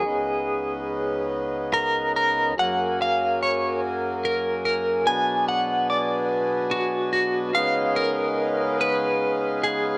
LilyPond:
<<
  \new Staff \with { instrumentName = "Clean electric guitar" } { \time 3/4 \key cis \mixolydian \tempo 4 = 72 gis'4. r8 ais'8 ais'8 | fis''8 eis''8 cis''8 r8 ais'8 ais'8 | gis''8 fis''8 d''8 r8 fis'8 fis'8 | eis''8 ais'4 b'4 gis'8 | }
  \new Staff \with { instrumentName = "Harmonium" } { \time 3/4 \key cis \mixolydian r2. | gis'2.~ | gis'2. | eis''2. | }
  \new Staff \with { instrumentName = "Harmonium" } { \clef bass \time 3/4 \key cis \mixolydian <cis, cis b dis'>2. | <fis, fis ais>2. | <b, fis b d'>2. | <cis gis b dis'>2. | }
>>